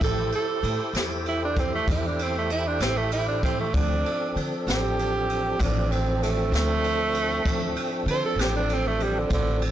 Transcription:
0.01 0.30 A1 medium
0.01 3.70 E4 medium
0.01 3.71 G4 medium
0.01 3.71 A4 medium
0.01 0.33 A4 medium
0.01 3.71 C5 medium
0.01 kick loud
0.01 ride medium
0.32 0.94 A4 medium
0.32 ride medium
0.63 0.78 A2 medium
0.63 ride medium
0.93 1.83 E2 medium
0.93 snare loud
0.93 ride medium
1.26 1.42 E4 medium
1.26 ride medium
1.45 1.61 D4 loud
1.56 1.73 C4 medium
1.56 kick medium
1.56 ride medium
1.75 1.88 A3 medium
1.88 2.77 E2 loud
1.88 kick medium
1.88 ride medium
1.92 2.08 E4 medium
2.07 2.24 D4 medium
2.19 2.35 C4 loud
2.19 ride medium
2.38 2.51 A3 medium
2.50 2.69 E4 loud
2.50 ride medium
2.68 2.84 D4 medium
2.80 3.70 A1 loud
2.80 2.99 C4 loud
2.80 snare loud
2.80 ride medium
2.97 3.12 A3 medium
3.11 3.27 E4 loud
3.11 ride medium
3.28 3.43 D4 medium
3.43 3.58 C4 medium
3.43 kick medium
3.43 ride medium
3.60 3.76 A3 medium
3.74 4.03 D2 loud
3.74 7.42 F3 medium
3.74 7.43 C4 medium
3.74 4.35 D4 loud
3.74 7.43 D4 medium
3.74 7.42 A4 medium
3.74 kick loud
3.74 ride medium
4.06 ride medium
4.36 4.50 D3 medium
4.36 ride medium
4.67 5.56 A1 medium
4.67 5.63 G4 medium
4.67 snare loud
4.67 ride medium
4.99 ride medium
5.29 ride medium
5.59 6.49 A1 loud
5.59 5.93 D4 medium
5.59 kick medium
5.59 ride medium
5.91 6.24 C4 loud
5.91 ride medium
6.23 6.53 A3 medium
6.23 snare soft
6.23 ride medium
6.52 7.41 D2 loud
6.52 7.74 A3 loud
6.52 snare loud
6.52 ride medium
6.84 ride medium
7.14 ride medium
7.45 7.74 D2 medium
7.45 9.71 F3 medium
7.45 9.71 C4 medium
7.45 9.71 D4 medium
7.45 9.71 A4 medium
7.45 kick loud
7.45 ride medium
7.76 ride medium
8.06 8.21 D3 medium
8.06 ride medium
8.11 8.24 C5 loud
8.26 8.42 A4 loud
8.36 9.26 A1 medium
8.36 ride medium
8.41 8.54 G4 medium
8.41 snare loud
8.56 8.75 D4 loud
8.69 ride medium
8.73 8.89 C4 loud
8.87 9.04 A3 medium
9.00 9.20 G3 loud
9.00 ride medium
9.19 9.32 D3 medium
9.30 9.71 A1 loud
9.30 9.63 D3 loud
9.30 kick medium
9.30 ride medium
9.62 ride medium

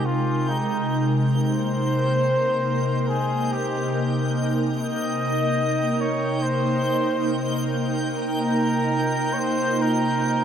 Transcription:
0.00 10.22 C3 medium
0.00 1.35 G#3 medium
0.00 1.34 D#4 medium
0.00 10.44 A#4 medium
0.00 1.35 D#5 medium
0.00 10.44 G5 medium
0.00 10.44 G6 medium
0.05 0.50 F4 medium
0.49 1.13 D#4 medium
1.35 10.44 A#3 medium
1.35 3.09 C5 loud
2.19 10.44 D#4 medium
2.27 10.44 D#5 medium
3.08 3.53 G#4 medium
3.52 4.36 G4 medium
4.78 6.02 D#5 loud
6.01 6.44 C#5 medium
6.42 7.70 C5 loud
8.14 9.34 A#4 medium
8.53 10.44 F4 medium
9.33 9.40 C#5 medium
9.38 9.83 C5 loud
9.82 10.44 A#4 loud

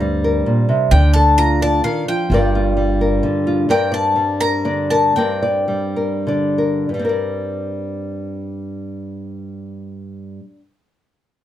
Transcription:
0.00 0.41 D2 medium
0.00 0.45 G2 medium
0.00 0.92 G3 medium
0.00 0.92 C4 medium
0.00 0.92 D5 medium
0.00 0.19 A#5 medium
0.24 0.90 A#4 medium
0.46 0.68 A#2 medium
0.69 0.91 C3 medium
0.91 1.80 D2 medium
0.91 1.84 D3 medium
0.91 1.62 D5 medium
0.91 1.13 G5 loud
1.13 2.28 A4 medium
1.13 1.37 A5 medium
1.38 2.28 F4 medium
1.38 1.61 A#5 loud
1.62 2.34 D5 medium
1.62 1.84 A5 loud
1.84 2.07 D#3 medium
1.84 2.08 F5 medium
2.08 2.31 F3 medium
2.08 3.43 G5 medium
2.30 3.19 G1 medium
2.30 3.68 G2 medium
2.30 2.76 G3 medium
2.30 2.54 F4 medium
2.30 3.00 A#4 medium
2.34 3.69 D5 medium
2.55 3.46 F4 medium
2.77 4.14 G3 medium
3.01 3.67 A#4 soft
3.23 3.69 D3 medium
3.47 3.67 F4 medium
3.69 5.15 G2 medium
3.69 5.15 C4 medium
3.69 4.40 A#4 medium
3.69 3.91 D5 medium
3.69 3.93 G5 medium
3.92 4.65 D5 medium
3.92 4.37 A5 medium
4.16 5.67 G3 medium
4.41 4.90 A#4 soft
4.41 4.90 A#5 loud
4.65 5.15 D3 medium
4.65 5.18 D5 medium
4.90 5.17 A#4 soft
4.90 5.16 A5 medium
5.16 6.88 G2 medium
5.16 6.89 C4 medium
5.16 5.95 A#4 medium
5.16 5.41 D5 medium
5.16 6.22 G5 medium
5.42 6.26 D5 medium
5.68 6.93 G3 medium
5.96 6.56 A#4 soft
6.27 6.89 D3 soft
6.27 6.86 D5 soft
6.58 6.85 A#4 soft
6.89 10.39 G2 soft
6.94 10.44 G3 soft
6.99 10.49 C4 soft
7.05 10.55 A#4 soft
7.09 10.59 D5 soft

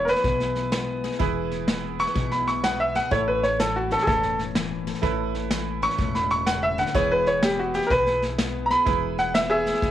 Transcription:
0.00 0.11 E1 medium
0.00 1.19 E3 medium
0.00 0.71 B3 medium
0.00 1.16 E4 medium
0.00 1.16 G#4 medium
0.00 1.17 B4 medium
0.05 2.00 E4 medium
0.05 0.09 A#4 medium
0.05 snare soft
0.09 1.48 B4 loud
0.16 snare soft
0.24 1.07 B1 medium
0.24 1.20 B2 medium
0.24 kick loud
0.24 snare soft
0.40 snare soft
0.55 snare soft
0.72 1.18 B3 medium
0.72 snare loud
0.72 hi-hat pedal medium
1.04 1.18 G#4 medium
1.04 snare soft
1.12 snare soft
1.19 2.03 E1 medium
1.19 3.59 E3 medium
1.19 3.07 E4 medium
1.19 3.07 G#4 medium
1.19 3.08 B4 medium
1.19 kick loud
1.19 snare soft
1.51 snare soft
1.68 2.62 B3 medium
1.68 snare loud
1.68 hi-hat pedal medium
1.99 5.50 E4 medium
1.99 2.31 C#6 loud
1.99 snare soft
2.07 snare soft
2.15 2.98 B1 medium
2.15 3.11 B2 medium
2.15 kick loud
2.15 snare soft
2.31 2.47 B5 medium
2.31 snare soft
2.47 2.63 C#6 medium
2.47 snare soft
2.64 3.09 B3 medium
2.64 2.79 F#5 medium
2.64 snare loud
2.64 hi-hat pedal medium
2.80 2.95 E5 medium
2.95 3.10 G#4 medium
2.95 3.11 F#5 medium
2.95 snare soft
3.11 3.94 A1 medium
3.11 4.07 A2 medium
3.11 4.99 E4 medium
3.11 4.99 A4 medium
3.11 3.27 C#5 medium
3.11 5.00 C#5 medium
3.11 kick loud
3.11 snare soft
3.28 3.43 B4 medium
3.43 3.59 C#5 medium
3.43 snare soft
3.60 4.55 E3 medium
3.60 3.75 A4 medium
3.60 snare loud
3.60 hi-hat pedal medium
3.76 3.91 F#4 medium
3.91 5.01 C#4 medium
3.91 4.06 A4 medium
3.91 snare soft
3.99 4.07 G#4 medium
3.99 snare soft
4.07 4.90 E1 medium
4.07 5.01 A2 medium
4.07 4.38 A4 medium
4.07 kick loud
4.07 snare soft
4.23 snare soft
4.39 snare soft
4.55 5.51 E3 medium
4.55 snare loud
4.55 hi-hat pedal medium
4.87 5.01 A4 medium
4.87 snare soft
4.95 snare soft
5.02 5.86 A1 medium
5.02 5.97 A2 medium
5.02 6.90 E4 medium
5.02 6.90 A4 medium
5.02 6.91 B4 medium
5.02 kick loud
5.02 snare soft
5.35 snare soft
5.51 6.95 E3 medium
5.51 snare loud
5.51 hi-hat pedal medium
5.82 6.93 C#4 medium
5.82 6.14 C#6 loud
5.82 snare soft
5.90 snare soft
5.98 6.82 E1 medium
5.98 6.92 A2 medium
5.98 kick medium
5.98 snare soft
6.15 6.30 B5 medium
6.15 snare soft
6.30 6.46 C#6 medium
6.30 snare soft
6.46 6.78 C#3 medium
6.46 6.62 F#5 medium
6.46 snare loud
6.46 hi-hat pedal medium
6.63 6.78 E5 loud
6.78 6.95 D3 medium
6.78 6.94 F#5 medium
6.78 snare soft
6.87 snare soft
6.94 7.77 E1 medium
6.94 8.86 E3 medium
6.94 7.42 B3 medium
6.94 8.82 E4 medium
6.94 7.74 E4 medium
6.94 8.82 G#4 medium
6.94 8.70 G#4 medium
6.94 8.82 B4 medium
6.94 7.10 C#5 medium
6.94 kick loud
6.94 snare soft
7.12 7.27 B4 medium
7.26 7.42 C#5 medium
7.26 snare soft
7.43 8.38 B3 medium
7.43 7.59 G4 medium
7.43 snare loud
7.43 hi-hat pedal medium
7.59 7.75 F#4 medium
7.74 9.67 E4 medium
7.74 7.90 G4 medium
7.74 snare soft
7.82 snare soft
7.87 8.73 B1 medium
7.87 7.90 A#4 medium
7.87 kick loud
7.87 snare soft
7.91 8.86 B2 medium
7.91 8.21 B4 loud
8.06 snare soft
8.22 snare soft
8.38 8.85 B3 medium
8.38 snare loud
8.38 hi-hat pedal medium
8.66 8.70 A#5 medium
8.70 8.85 G#4 medium
8.70 9.17 B5 loud
8.70 snare soft
8.85 9.69 E1 medium
8.85 9.91 E3 medium
8.85 9.91 E4 medium
8.85 9.91 G#4 medium
8.85 9.91 B4 medium
8.85 kick loud
8.85 snare soft
9.18 9.34 F#5 medium
9.18 snare soft
9.34 9.91 B3 medium
9.34 9.49 E5 loud
9.34 snare loud
9.34 hi-hat pedal medium
9.50 9.91 G#4 medium
9.50 9.91 E5 loud
9.66 9.91 E4 medium
9.66 snare soft
9.75 snare soft
9.82 9.91 B1 medium
9.82 9.91 B2 medium
9.82 kick loud
9.82 snare soft

